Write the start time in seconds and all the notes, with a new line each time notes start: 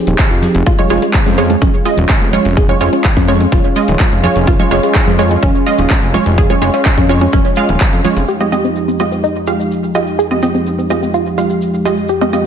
Already playing: F3 C4 D#4 G4 G#4 C5
0.07 D#1, closed hi-hat, high conga, shaker
0.19 kick, clap, closed hi-hat, shaker
0.31 F2, closed hi-hat, shaker
0.42 open hi-hat, high conga, shaker
0.55 F1, closed hi-hat, shaker
0.66 G#3 C#4 F4, kick, closed hi-hat, shaker
0.78 G#3 F4 C#5, closed hi-hat, high bongo, high conga, shaker
0.89 F1 G#3 F4 C#5, open hi-hat, shaker
1.02 G#3, closed hi-hat, shaker
1.14 kick, clap, closed hi-hat, shaker
1.26 F2 G#3, closed hi-hat, high conga, shaker
1.38 G#3 F4 C#5, open hi-hat, shaker
1.50 G#3, closed hi-hat, high bongo, shaker
1.61 F1 C#4, kick, closed hi-hat, high conga, shaker
1.74 shaker
1.85 G#3 F4 D#5, open hi-hat, shaker
1.97 D#1, closed hi-hat, high conga, shaker
2.09 kick, clap, closed hi-hat, shaker
2.21 F1, closed hi-hat, shaker
2.33 G#3 F4 C#5, open hi-hat, high conga, shaker
2.45 F1, closed hi-hat, shaker
2.57 G#4, kick, closed hi-hat, shaker
2.68 G#3 C#4 F4 C#5, closed hi-hat, high bongo, high conga, shaker
2.81 F1 G#3 C#4 F4 C#5, open hi-hat, shaker
2.93 C#4, closed hi-hat, shaker
3.04 kick, clap, closed hi-hat, shaker
3.16 F2 C#4, kick, closed hi-hat, high conga, shaker
3.28 G#3 C#4 F4 C#5, open hi-hat, shaker
3.40 C#4, closed hi-hat, high bongo, shaker
3.52 F1 F4, kick, closed hi-hat, cowbell, high conga, shaker
3.64 cowbell, shaker
3.76 G#3 F4 D#5, open hi-hat, shaker
3.88 D#1, closed hi-hat, high conga, shaker
4.00 kick, clap, closed hi-hat, shaker
4.12 F1, closed hi-hat, shaker
4.24 G#3 F4 C#5, open hi-hat, high conga, shaker
4.36 F1, closed hi-hat, shaker
4.47 F4, kick, closed hi-hat, shaker
4.59 G#3 F4 C#5, closed hi-hat, high bongo, high conga, shaker
4.71 F1 G#3 F4 C#5, open hi-hat, shaker
4.83 G#3, closed hi-hat, shaker
4.95 kick, clap, closed hi-hat, shaker
5.07 F2 G#3, closed hi-hat, high conga, shaker
5.18 G#3 F4 C#5, open hi-hat, shaker
5.31 G#3, closed hi-hat, high bongo, shaker
5.43 F1 C#4, kick, closed hi-hat, high conga, shaker
5.55 shaker
5.66 G#3 F4 D#5, open hi-hat, shaker
5.78 D#1, closed hi-hat, high conga, shaker
5.90 kick, clap, closed hi-hat, shaker
6.01 F1, closed hi-hat, shaker
6.14 G#3 F4 C#5, open hi-hat, high conga, shaker
6.26 F1, closed hi-hat, shaker
6.38 G#4, kick, closed hi-hat, shaker
6.50 G#3 C#4 F4 C#5, closed hi-hat, high bongo, high conga, shaker
6.62 F1 G#3 C#4 F4 C#5, open hi-hat, shaker
6.74 C#4, closed hi-hat, cowbell, shaker
6.85 kick, clap, closed hi-hat, shaker
6.97 F2 C#4, kick, closed hi-hat, high conga, shaker
7.09 G#3 C#4 F4 C#5, open hi-hat, shaker
7.21 C#4, closed hi-hat, high bongo, shaker
7.32 F1 C#4, kick, closed hi-hat, cowbell, high conga, shaker
7.45 cowbell, shaker
7.56 G#3 F4 F5, open hi-hat, shaker
7.69 D#1, closed hi-hat, high conga, shaker
7.80 kick, clap, closed hi-hat, shaker
7.93 F2, closed hi-hat, shaker
8.05 G#3 F4 C#5, open hi-hat, high conga, shaker
8.17 F1, closed hi-hat, shaker
8.28 F2 F3 G#3 D#4 G4, shaker
8.40 G#3 C4 F4 G4 D#5, shaker
8.52 G#3 C4 F4 G4 D#5, shaker
8.64 C4, shaker
8.76 shaker
8.88 C4, shaker
9.00 G#3 C4 F4 G4 D#5, shaker
9.12 C4, shaker
9.24 D#4, shaker
9.35 shaker
9.47 G#3 F4 G4 F5, shaker
9.60 shaker
9.71 shaker
9.84 shaker
9.95 G#3 F4 G4 D#5, shaker
10.07 shaker
10.19 G#4, shaker
10.31 G#3 C4 F4 G4 D#5, shaker
10.43 G#3 C4 F4 G4 D#5, shaker
10.54 C4, shaker
10.66 shaker
10.79 C4, shaker
10.90 G#3 C4 F4 G4 D#5, shaker
11.02 C4, shaker
11.14 F4, shaker
11.26 shaker
11.38 G#3 F4 G4 F5, shaker
11.50 shaker
11.62 shaker
11.74 shaker
11.85 G#3 F4 G4 D#5, shaker
11.97 shaker
12.08 F4 G4, shaker
12.21 G#3 C4 F4 G4 D#5, shaker
12.33 G#3 C4 F4 G4 D#5, shaker